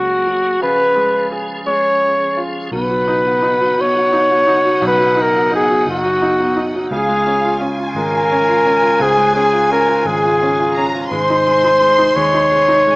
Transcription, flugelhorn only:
Already playing: F#4
0.63 B4
1.67 C#5
2.74 B4
3.81 C#5
4.87 B4
5.22 A#4
5.56 G#4
5.92 F#4
6.95 G#4
7.98 A#4
9.02 G#4
9.36 G#4
9.72 A#4
10.07 G#4
11.11 C5
12.16 C#5

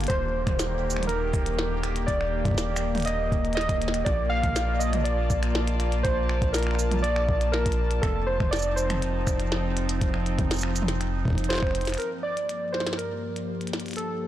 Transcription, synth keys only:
0.08 C5
1.07 A#4
2.07 D5
3.05 D#5
3.55 D#5
4.05 D5
4.29 F5
4.79 D#5
5.04 D5
6.03 C5
6.53 A#4
7.02 D5
7.52 A#4
8.02 A4
8.27 C5
8.51 D5
8.76 C5
11.49 C5
11.98 A#4
12.23 D5
12.72 C5
12.97 A#4
13.97 A4

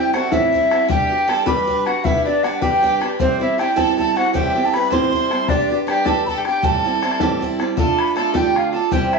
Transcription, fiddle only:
Already playing: G4
0.15 F#4
0.33 E4
0.90 G4
1.28 A4
1.46 B4
1.87 F#4
2.05 E4
2.26 D4
2.63 G4
3.20 C4
3.41 E4
3.59 G4
3.77 A4
3.99 A4
4.18 F#4
4.36 G4
4.75 B4
4.93 C5
5.49 D4
5.89 G4
6.07 A4
6.28 A4
6.38 G4
6.46 G4
6.63 A4
7.77 A4
8.16 A4
8.34 G4
8.56 F4
8.73 A4
8.92 G4
9.13 E4

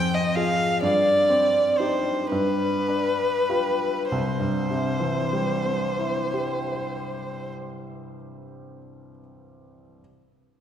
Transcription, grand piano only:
Already playing: F2 C4
0.36 F4 G#4
0.82 G2
1.30 C4
1.80 D#4 G4
2.32 G2
2.88 D4
3.50 F4 G4
4.12 C2
4.40 G2
4.70 C3
5.00 E3
5.33 G3
5.65 C4
5.99 E4
6.34 G4
6.72 C5

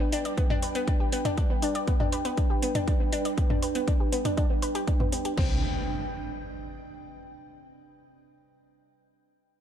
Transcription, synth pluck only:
0.00 B3
0.13 D4
0.25 D5
0.38 B3
0.50 D4
0.63 B4
0.75 B3
0.88 D4
1.00 G4
1.13 B3
1.25 D4
1.38 D4
1.50 B3
1.63 D4
1.75 D5
1.87 B3
2.00 D4
2.12 B4
2.25 B3
2.37 D4
2.50 G4
2.62 B3
2.75 D4
2.88 D4
3.00 B3
3.13 D4
3.25 D5
3.37 B3
3.50 D4
3.63 B4
3.75 B3
3.88 D4
4.00 G4
4.13 B3
4.25 D4
4.37 D4
4.50 B3
4.63 B4
4.75 G4
4.87 D4
5.00 B3
5.13 B3
5.25 G4
5.38 C4

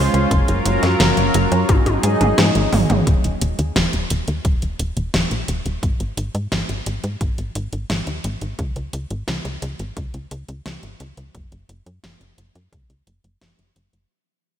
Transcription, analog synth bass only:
0.14 C#2
0.31 F#1
0.48 F#1
0.66 F#1
0.83 F#2
1.00 F#1
1.17 F#1
1.35 F#1
1.52 F#2
1.69 G#1
1.86 G#1
2.04 G#2
2.21 G#1
2.38 G#2
2.55 G#1
2.73 G#1
2.90 G#1
3.07 D#1
3.24 D#1
3.42 D#1
3.59 D#2
3.76 D#1
3.94 D#1
4.11 D#1
4.28 D#2
4.45 D#1
4.62 D#1
4.79 D#1
4.97 D#1
5.14 D#1
5.31 A#1
5.48 D#1
5.66 D#1
5.83 G#1
6.00 G#1
6.17 G#1
6.35 G#2
6.52 G#1
6.69 G#1
6.87 G#1
7.04 G#2
7.21 G#1
7.38 G#1
7.55 G#1
7.73 G#1
7.90 G#1
8.07 D#2
8.24 G#1
8.42 G#1
8.59 C#2
8.76 C#2
8.93 C#2
9.11 G#1
9.28 C#2
9.45 C#2
9.62 C#2
9.80 G#1
9.97 C#2
10.14 C#2
10.31 C#2
10.49 C#2
10.66 C#2
10.83 G#1
11.00 C#2
11.17 C#2
11.35 F#1
11.52 F#1
11.69 F#1
11.86 F#2
12.04 F#1
12.21 F#1
12.38 F#1
12.55 F#2
12.72 C#2
12.90 C#2
13.07 F#1
13.24 F#1
13.41 F#1
13.59 F#1
13.76 F#1
13.93 F#1

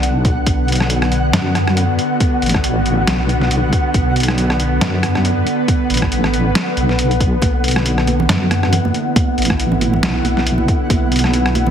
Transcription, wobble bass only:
Already playing: B1
0.47 B1
1.34 F#2
2.42 A1
3.07 B1
3.94 B1
4.81 F#2
5.90 A1
6.77 B1
7.42 B1
8.29 F#2
9.38 A1
10.03 B1
10.90 B1

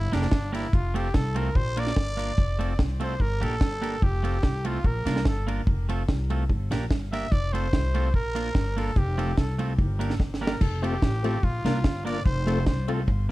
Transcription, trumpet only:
Already playing: E4
0.14 D4
0.54 E4
0.74 F4
0.96 G4
1.15 A4
1.37 A#4
1.56 C5
1.79 D5
3.02 C5
3.21 A#4
3.44 A4
4.03 G4
4.67 F4
4.86 A#4
5.28 A4
7.12 E5
7.32 D5
7.53 C5
8.15 A#4
8.78 A4
8.98 G4
9.39 A4
10.42 A#4
10.62 A4
10.83 G4
11.44 F4
12.06 D5
12.25 C5
12.67 C5

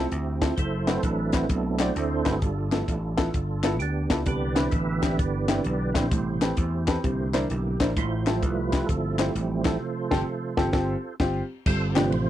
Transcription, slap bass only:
0.12 D2
0.58 F#1
1.04 A1
1.50 B1
1.96 D2
2.26 G1
2.43 G1
2.88 A1
3.34 G1
3.81 D2
4.11 C#2
4.27 C2
4.72 A1
5.19 G1
5.66 B1
5.96 A#1
6.12 A1
6.57 E2
7.04 C2
7.51 B1
7.80 A#1
7.97 A1
8.43 C2
8.89 G1
9.35 A1
10.12 G1
10.57 G1
10.74 G1
11.20 G1
11.66 G1
12.13 A1

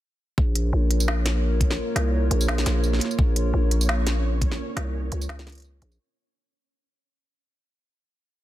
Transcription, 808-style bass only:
0.38 A#1
0.73 A#1
1.96 C2
2.31 A#1
2.66 A#1
3.19 A#1
3.54 A#1
4.77 C2
5.12 C#2
5.82 A#1

